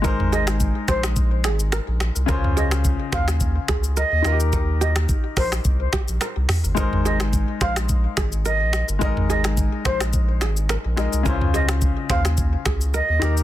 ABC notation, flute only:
X:1
M:4/4
L:1/16
Q:"Swing 16ths" 1/4=107
K:Ab
V:1 name="Flute"
z2 e z3 c z8 z | z2 e z3 f z4 z e3 z | z2 e z3 c z8 z | z2 e z3 f z4 z e3 z |
z2 e z3 c z8 z | z2 e z3 f z4 z e3 z |]